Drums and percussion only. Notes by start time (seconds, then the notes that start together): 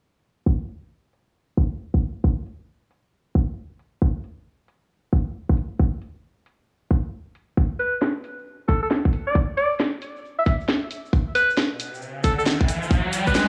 0.46 kick
0.69 open hi-hat
1.13 open hi-hat
1.57 kick, open hi-hat
1.94 kick
2.02 open hi-hat
2.24 kick
2.46 open hi-hat
2.91 open hi-hat
3.35 kick, open hi-hat
3.79 open hi-hat
4.02 kick
4.24 open hi-hat
4.68 open hi-hat
5.13 kick, open hi-hat
5.50 kick
5.57 open hi-hat
5.80 kick
6.02 open hi-hat
6.46 open hi-hat
6.91 kick, open hi-hat
7.35 open hi-hat
7.57 kick, shaker
7.79 open hi-hat, shaker
7.94 shaker
8.02 snare
8.24 open hi-hat, shaker
8.38 shaker
8.47 shaker
8.68 kick, open hi-hat, shaker
8.83 shaker
8.91 snare, shaker
9.05 kick
9.13 open hi-hat, shaker
9.28 shaker
9.35 kick, shaker
9.57 open hi-hat, shaker
9.72 shaker
9.80 snare, shaker
10.02 open hi-hat, shaker
10.16 shaker
10.25 shaker
10.46 kick, open hi-hat, shaker
10.61 shaker
10.69 snare, shaker
10.91 open hi-hat, shaker
11.06 shaker
11.13 kick, shaker
11.35 open hi-hat, shaker
11.50 shaker
11.57 snare, shaker
11.80 open hi-hat, shaker
11.94 shaker
12.02 shaker
12.24 kick, open hi-hat, shaker
12.39 shaker
12.46 snare, shaker
12.61 kick
12.69 open hi-hat, shaker
12.83 shaker
12.91 kick, shaker
13.13 open hi-hat, shaker
13.27 kick, shaker
13.35 snare, shaker